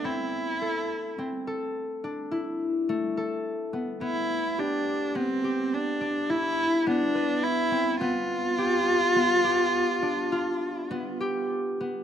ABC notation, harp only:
X:1
M:7/4
L:1/8
Q:1/4=105
K:Gmix
V:1 name="Harp"
C2 A2 C A2 D E2 A, A2 B, | B,2 G2 B, G2 D E2 B, B2 C | B,2 G2 B, G2 D F2 B, G2 B, |]